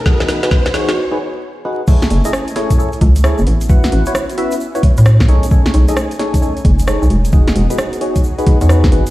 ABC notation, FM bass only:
X:1
M:4/4
L:1/16
Q:"Swing 16ths" 1/4=132
K:F#dor
V:1 name="FM bass" clef=bass
z16 | z2 F,,, z6 z C,,3 F,,, A,,,2- | A,,,2 A,,, z8 A,,3 B,,, z | z2 B,,, z6 z F,,,3 B,,, E,,,2- |
E,,,2 E,,, z8 E,,3 G,,, z |]